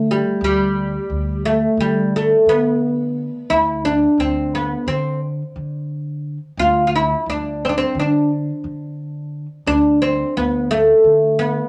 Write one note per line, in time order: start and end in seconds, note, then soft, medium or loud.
0.00 0.20 D3 medium
0.11 0.43 G3 medium
0.41 0.95 D2 medium
0.41 1.49 G3 medium
1.10 1.64 D2 medium
1.46 1.80 A3 medium
1.77 2.32 D3 medium
1.77 2.15 G3 medium
2.16 2.46 A3 medium
2.46 3.28 D3 medium
2.46 3.54 B3 medium
3.50 4.04 D2 medium
3.50 3.85 E4 medium
3.85 4.20 D4 medium
4.18 4.72 D2 medium
4.18 4.54 C4 medium
4.55 4.86 B3 medium
4.87 5.41 D3 medium
4.87 5.19 C4 medium
5.56 6.37 D3 medium
6.57 7.12 D2 medium
6.57 6.86 F4 medium
6.87 6.93 F4 medium
6.96 7.29 E4 medium
7.26 7.81 D2 medium
7.26 7.64 D4 medium
7.65 7.69 C4 medium
7.69 7.76 D4 medium
7.78 7.97 C4 medium
7.95 8.49 D3 medium
8.00 8.29 D4 medium
8.64 9.45 D3 medium
9.66 10.21 D2 medium
9.66 9.99 D4 medium
10.02 10.33 C4 medium
10.37 10.90 D2 medium
10.37 10.70 B3 medium
10.71 11.38 A3 medium
11.04 11.58 D3 medium
11.39 11.69 B3 medium